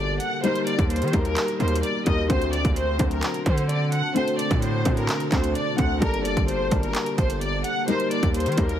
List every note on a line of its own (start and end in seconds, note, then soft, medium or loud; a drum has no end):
0.00 0.19 G1 loud
0.00 0.40 D3 medium
0.00 0.43 G3 loud
0.00 0.44 A#3 loud
0.00 2.26 A#3 medium
0.00 0.46 D4 loud
0.00 2.26 G4 medium
0.00 0.46 A4 loud
0.00 0.46 A#4 loud
0.00 0.17 D5 medium
0.00 0.40 A5 medium
0.20 0.40 F#5 medium
0.20 closed hi-hat medium
0.43 2.28 D#3 medium
0.43 0.89 G3 loud
0.43 0.89 A#3 loud
0.43 0.90 D#4 loud
0.43 2.28 A#4 medium
0.43 0.90 A#4 loud
0.43 0.63 C5 loud
0.43 closed hi-hat medium
0.55 closed hi-hat medium
0.67 0.87 D5 medium
0.67 closed hi-hat medium
0.79 1.03 D#2 loud
0.79 kick loud
0.79 closed hi-hat medium
0.90 1.23 C5 medium
0.90 closed hi-hat medium
0.96 closed hi-hat medium
1.02 1.13 D#3 loud
1.02 closed hi-hat medium
1.08 closed hi-hat soft
1.12 1.36 D#2 loud
1.12 1.43 G3 medium
1.12 1.44 A#3 medium
1.12 1.44 D#4 medium
1.12 1.44 A#4 loud
1.12 kick medium
1.12 closed hi-hat medium
1.25 1.58 A#4 medium
1.25 closed hi-hat medium
1.36 clap loud
1.36 closed hi-hat medium
1.48 closed hi-hat medium
1.59 1.82 D#2 loud
1.59 1.90 G3 medium
1.59 1.90 A#3 medium
1.59 1.91 D#4 medium
1.59 1.91 A#4 loud
1.59 1.80 C5 medium
1.59 closed hi-hat soft
1.68 closed hi-hat medium
1.75 closed hi-hat medium
1.83 2.03 D5 medium
1.83 closed hi-hat medium
2.05 2.29 D#2 loud
2.05 2.21 G3 medium
2.05 2.21 A#3 medium
2.05 2.22 D#4 medium
2.05 2.22 A#4 loud
2.05 2.26 D#5 medium
2.05 kick medium
2.05 closed hi-hat medium
2.29 2.63 D2 loud
2.29 2.74 D3 loud
2.29 7.84 D3 medium
2.29 2.75 A3 medium
2.29 5.98 C4 medium
2.29 2.75 C4 loud
2.29 5.98 F#4 medium
2.29 2.76 F#4 loud
2.29 2.50 C5 loud
2.29 5.98 A5 medium
2.29 kick loud
2.29 closed hi-hat medium
2.42 closed hi-hat medium
2.53 2.73 D5 medium
2.53 closed hi-hat medium
2.65 2.98 D2 loud
2.65 kick loud
2.65 closed hi-hat medium
2.76 3.09 C5 medium
2.76 closed hi-hat medium
2.98 3.22 D2 loud
2.98 3.59 D3 medium
2.98 3.60 F#3 medium
2.98 3.60 C4 medium
2.98 3.61 F#4 loud
2.98 kick medium
2.98 closed hi-hat medium
3.11 3.44 A#4 medium
3.11 closed hi-hat medium
3.23 clap loud
3.23 closed hi-hat medium
3.34 closed hi-hat medium
3.46 4.02 D3 loud
3.46 3.66 C5 medium
3.46 kick loud
3.46 closed hi-hat medium
3.58 closed hi-hat medium
3.69 3.89 D5 medium
3.69 closed hi-hat medium
3.92 4.12 F#5 medium
3.92 closed hi-hat medium
4.15 4.61 D3 loud
4.15 4.61 A3 loud
4.15 4.61 C4 loud
4.15 4.62 F#4 loud
4.15 4.36 C5 loud
4.15 closed hi-hat medium
4.28 closed hi-hat medium
4.39 4.59 D5 medium
4.39 closed hi-hat medium
4.51 4.84 A2 loud
4.51 kick loud
4.51 closed hi-hat medium
4.62 4.95 C5 medium
4.62 closed hi-hat medium
4.84 5.08 A2 loud
4.84 5.15 D3 medium
4.84 5.16 A3 medium
4.84 5.16 C4 medium
4.84 5.16 F#4 loud
4.84 kick loud
4.84 closed hi-hat medium
4.97 5.30 A#4 medium
4.97 closed hi-hat medium
5.09 clap loud
5.09 closed hi-hat medium
5.20 closed hi-hat medium
5.32 5.54 D2 loud
5.32 5.62 D3 medium
5.32 5.63 A3 medium
5.32 5.63 C4 medium
5.32 5.64 F#4 loud
5.32 5.52 C5 medium
5.32 kick loud
5.32 clap medium
5.32 closed hi-hat medium
5.44 closed hi-hat medium
5.55 5.75 D5 medium
5.55 closed hi-hat medium
5.76 6.01 D2 loud
5.76 5.92 D3 medium
5.76 5.93 A3 medium
5.76 5.93 C4 medium
5.76 5.94 F#4 loud
5.76 5.98 F#5 medium
5.76 kick medium
5.76 closed hi-hat medium
6.00 6.35 G1 loud
6.00 6.46 G3 loud
6.00 6.47 A#3 loud
6.00 8.79 A#3 medium
6.00 6.47 D4 loud
6.00 7.86 G4 medium
6.00 6.48 A4 loud
6.00 6.22 A#4 loud
6.00 7.86 A5 medium
6.00 kick loud
6.00 closed hi-hat medium
6.14 closed hi-hat medium
6.25 6.45 D5 medium
6.25 closed hi-hat medium
6.37 6.70 G1 loud
6.37 kick loud
6.37 closed hi-hat medium
6.48 6.81 C5 medium
6.48 closed hi-hat medium
6.71 6.94 G1 loud
6.71 7.32 G3 medium
6.71 7.32 A#3 medium
6.71 7.32 D4 medium
6.71 7.33 A#4 loud
6.71 kick loud
6.71 closed hi-hat medium
6.83 7.16 A#4 medium
6.83 closed hi-hat medium
6.95 clap loud
6.95 closed hi-hat medium
7.06 closed hi-hat medium
7.18 7.63 G1 loud
7.18 7.38 C5 medium
7.18 kick loud
7.18 closed hi-hat medium
7.30 closed hi-hat medium
7.41 7.61 D5 medium
7.41 closed hi-hat medium
7.64 7.84 F#5 medium
7.64 closed hi-hat medium
7.88 8.79 D#3 medium
7.88 8.33 G3 loud
7.88 8.33 A#3 loud
7.88 8.34 D#4 loud
7.88 8.79 G4 medium
7.88 8.79 A#4 medium
7.88 8.34 A#4 loud
7.88 8.08 C5 loud
7.88 closed hi-hat medium
8.00 closed hi-hat medium
8.11 8.31 D5 medium
8.11 closed hi-hat medium
8.23 8.48 D#2 loud
8.23 kick loud
8.23 closed hi-hat medium
8.34 8.67 C5 medium
8.34 closed hi-hat medium
8.40 closed hi-hat medium
8.46 8.57 D#3 loud
8.46 closed hi-hat medium
8.52 closed hi-hat soft
8.57 8.79 D#2 loud
8.57 8.79 G3 medium
8.57 8.79 A#3 medium
8.57 8.79 D#4 medium
8.57 8.79 A#4 loud
8.57 kick medium
8.57 closed hi-hat medium
8.69 8.79 A#4 medium
8.69 closed hi-hat medium